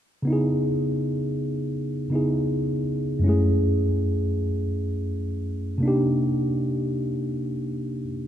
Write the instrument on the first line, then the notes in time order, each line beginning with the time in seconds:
tine electric piano
0.22 C#3 B3
0.27 D#4 E4
0.33 G#4
2.10 C#3 B3 D#4 E4
2.15 G#4
3.19 F#2 G#3
3.24 C#4 E4
3.28 A3 G#4
5.78 C3 A#3
5.83 D4 D#4
5.88 G4